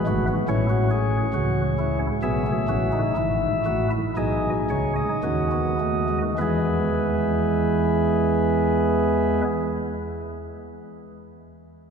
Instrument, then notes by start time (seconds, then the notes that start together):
pipe organ
Already playing: B4
0.07 G#1 G#2 A3 F#4
0.28 B3
0.48 A1 A2 C#4 E4 C#5
0.70 F#4
0.91 G#4
1.34 C#2 C#3 F#4
1.79 E4
2.23 B1 B2 B3 G#4 E5
2.46 A3
2.68 A1 A2 C#4 F#4
2.92 D#4
3.17 G#1 G#2 E4
3.66 A1 A2 F#4
3.91 E4
4.17 B1 B2 D#4 G#4 D#5
4.70 C#2 C#3 C#5
4.96 D#5
5.23 D#2 D#3 C#4 F#4
5.51 B3
5.80 A3
6.09 G#3
6.38 E2 E3 G#3 B3 E4 G#4 B4